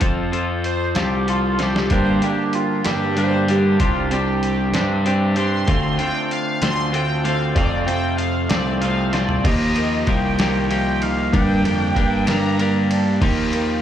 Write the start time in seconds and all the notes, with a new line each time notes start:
0.01 F2 F3 C4 F4 A4, kick, closed hi-hat
0.32 F3 C4 F4 A4, closed hi-hat
0.64 C5 G6, closed hi-hat
0.95 C2 F3 C4 F4 G4 A4 D6, snare, closed hi-hat
1.27 F3 C4 F4 A4 C6, closed hi-hat
1.58 F3 C4 F4 A4, snare, closed hi-hat
1.63 G4 D6
1.76 snare
1.90 G2 D3 G3 A#3 D4 G4 C5 G6, kick, closed hi-hat
2.22 G2 D3 G3 A#3 D4 G4 D6, closed hi-hat
2.53 F4 C6, closed hi-hat
2.85 G2 D3 G3 A#3 D4 G4 D6, snare, closed hi-hat
3.16 G2 D3 G3 A#3 D4 G4 C5 G6, closed hi-hat
3.48 G2 D3 G3 A#3 D4 G4 D6, closed hi-hat
3.79 C2 C3 G3 C4 D4 F4 G4 C6, kick, closed hi-hat
4.11 C3 G3 C4 D4 G4 D6, closed hi-hat
4.43 G4 D6, closed hi-hat
4.73 G2 C3 G3 C4 D4 G4, snare, closed hi-hat
5.05 C3 G3 C4 D4 G4, closed hi-hat
5.36 C3 G3 C4 D4 G4 C6 G7, closed hi-hat
5.67 D2 D3 A3 C4 F4, kick, closed hi-hat
5.98 D3 A3 C4 F4 G5 D7, closed hi-hat
6.31 F5 C7, closed hi-hat
6.62 D2 D3 A3 C4 F4 C6 G7, snare, closed hi-hat
6.93 D3 A3 C4 F4 G5 D7, closed hi-hat
7.24 D3 A3 C4 F4 F5 C7, closed hi-hat
7.55 F2 C3 F3 A3 C4 F4 D5 A6, kick, closed hi-hat
7.86 F2 C3 F3 A3 C4 F4 G5 D7, closed hi-hat
8.17 F5 C7, closed hi-hat
8.49 C2 F2 C3 F3 A3 C4 F4 D5 A6, snare, closed hi-hat
8.81 F2 C3 F3 A3 C4 F4 F5 C7, closed hi-hat
9.13 F2 C3 F3 A3 C4 F4 D5 A6, snare, closed hi-hat
9.29 floor tom
9.44 D#2 D#3 F3 A#3 D#4 G4 D#5 A#6, kick, crash, ride
9.75 A#3 D#4 G4, ride
10.07 C2 F3 A#3 D#4 G4 G5 D7, kick, ride
10.39 D#3 F3 A#3 D#4 G4, snare, ride
10.69 F3 A#3 D#4 G4 G5 D7, ride
11.02 D#4 F5 C7, ride
11.33 G2 D3 G3 A#3 D4 G4 G5 D7, kick, ride
11.63 F2 G3 A#3 D4 G4, ride
11.95 G2 G3 A#3 D4 G4, kick, ride
12.26 G2 D3 G3 A#3 D4 G4 A#5 F7, snare, ride
12.58 G3 A#3 D4 G4, ride
12.90 D4, ride
13.21 D#2 D#3 F3 A#3 D#4 G4, kick, crash
13.52 A#3 D#4 G4, ride